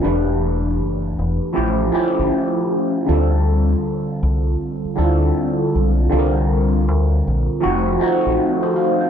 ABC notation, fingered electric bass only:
X:1
M:4/4
L:1/16
Q:"Swing 16ths" 1/4=79
K:Dm
V:1 name="Fingered electric bass" clef=bass
E,,,4 ^F,,,2 E,,, z A,,,2 z G,,, z4 | D,,4 z2 C,,2 z2 D,,2 z2 =B,,,2 | C,,4 D,,2 B,,, z F,,,2 z A,,, z4 |]